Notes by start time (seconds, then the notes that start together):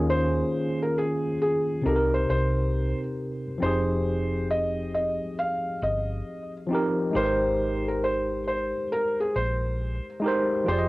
Already playing: D#2 D#3 A#3 C#4 F4 G#4
0.10 C5
0.82 A#4
0.98 G#4
1.42 G#4
1.82 C3 C4 D#4
1.86 C2 G4 A4 A#4
1.96 A#4
2.14 C5
2.30 C2 C5
3.58 F1 F3 C4
3.62 D#4 G4 G#4 C5
4.51 D#5
4.94 D#5
5.39 F5
5.82 G1 D#5
6.67 F3 C4
6.71 D#4 G4 A#4
7.11 G#1 G#3 D#4
7.15 G4 A#4 B4 C5
7.25 C5
7.88 A#4
8.04 C5
8.48 C5
8.92 A#4
9.20 G#4
9.36 A#1 C5
10.20 G#3 D#4
10.24 G4 A#4 C5
10.64 F1 F3 F4 G4
10.68 G#4 C5 D5
10.78 D#5